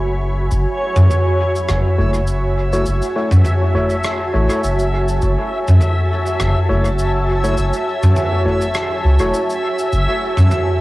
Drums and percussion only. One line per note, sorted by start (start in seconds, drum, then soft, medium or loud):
0.51 kick loud
0.51 cabasa medium
0.96 mid tom medium
0.96 cabasa medium
1.11 mid tom medium
1.11 cabasa medium
1.56 cabasa medium
1.69 cross-stick medium
1.69 mid tom medium
1.69 cabasa medium
1.99 kick loud
2.14 cabasa medium
2.27 cabasa medium
2.73 cabasa medium
2.86 cabasa medium
3.02 cabasa soft
3.31 mid tom medium
3.31 cabasa medium
3.45 mid tom medium
3.45 cabasa medium
3.75 kick loud
3.90 cabasa medium
4.04 cross-stick loud
4.04 cabasa medium
4.50 cabasa medium
4.64 cabasa medium
4.79 cabasa soft
5.08 cabasa medium
5.22 kick loud
5.22 cabasa medium
5.68 mid tom medium
5.68 cabasa medium
5.81 mid tom medium
5.81 cabasa medium
6.26 cabasa medium
6.40 cross-stick medium
6.40 mid tom medium
6.40 cabasa medium
6.69 kick loud
6.85 cabasa medium
6.99 cabasa medium
7.44 cabasa medium
7.57 cabasa medium
7.73 cabasa soft
8.03 mid tom medium
8.03 cabasa medium
8.16 mid tom medium
8.16 cabasa medium
8.46 kick loud
8.61 cabasa medium
8.75 cross-stick loud
8.75 cabasa medium
9.19 cabasa medium
9.34 cabasa medium
9.50 cabasa soft
9.79 cabasa medium
9.93 kick loud
9.93 cabasa medium
10.37 mid tom medium
10.37 cabasa medium
10.51 mid tom medium
10.51 cabasa medium